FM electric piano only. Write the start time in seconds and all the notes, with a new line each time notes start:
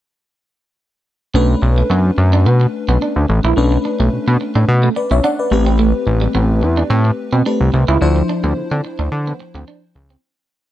1.34 A3 C#4 D4 B4
3.56 A3 C#4 D4 B4
4.96 B4 D5
5.11 C#5 E5
5.24 D5 F#5
5.39 B4 D5
5.51 A3 C4 G4 B4
7.46 A3 C4 G4 B4
8.01 F3 D4 E4 C5